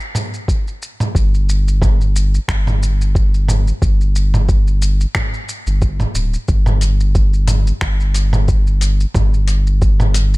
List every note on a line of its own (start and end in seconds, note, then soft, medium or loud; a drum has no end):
0.00 shaker soft
0.15 mid tom medium
0.15 shaker medium
0.34 shaker soft
0.48 kick loud
0.48 shaker soft
0.68 shaker soft
0.82 shaker medium
1.00 mid tom medium
1.00 shaker soft
1.15 2.39 G1 loud
1.15 kick loud
1.15 shaker soft
1.34 shaker soft
1.49 shaker medium
1.68 shaker soft
1.82 kick loud
1.82 mid tom medium
1.82 shaker soft
2.01 shaker soft
2.16 shaker medium
2.35 shaker soft
2.48 3.73 G1 medium
2.48 finger snap medium
2.48 kick loud
2.48 shaker soft
2.67 mid tom medium
2.67 shaker soft
2.83 shaker medium
3.01 shaker soft
3.15 kick loud
3.15 shaker soft
3.34 shaker soft
3.49 mid tom medium
3.49 shaker medium
3.68 shaker soft
3.82 5.06 G1 loud
3.82 kick loud
3.82 shaker soft
4.01 shaker soft
4.16 shaker medium
4.34 mid tom medium
4.34 shaker soft
4.49 kick loud
4.49 shaker soft
4.67 shaker soft
4.82 shaker medium
5.01 shaker soft
5.15 finger snap medium
5.15 kick loud
5.15 mid tom medium
5.15 shaker soft
5.34 shaker soft
5.49 shaker medium
5.67 6.06 G1 loud
5.67 shaker soft
5.82 kick loud
5.82 shaker soft
6.00 mid tom medium
6.00 shaker soft
6.15 6.37 D1 medium
6.15 shaker medium
6.34 shaker soft
6.48 7.73 G1 loud
6.48 kick medium
6.48 shaker soft
6.66 mid tom medium
6.66 shaker soft
6.81 closed hi-hat medium
6.81 shaker medium
7.00 shaker soft
7.15 kick loud
7.15 shaker soft
7.33 shaker soft
7.47 closed hi-hat medium
7.47 mid tom medium
7.47 shaker medium
7.67 shaker soft
7.81 9.06 G1 loud
7.81 finger snap medium
7.81 kick loud
7.81 shaker soft
8.00 shaker soft
8.14 closed hi-hat medium
8.14 shaker medium
8.33 mid tom medium
8.33 shaker soft
8.48 kick loud
8.48 shaker soft
8.67 shaker soft
8.81 closed hi-hat medium
8.81 shaker medium
9.00 shaker soft
9.14 10.38 G1 loud
9.14 kick medium
9.14 mid tom medium
9.14 shaker soft
9.34 shaker soft
9.48 closed hi-hat medium
9.48 shaker medium
9.67 shaker soft
9.82 kick loud
9.82 shaker soft
10.00 mid tom medium
10.00 shaker soft
10.14 closed hi-hat medium
10.14 shaker medium
10.34 shaker soft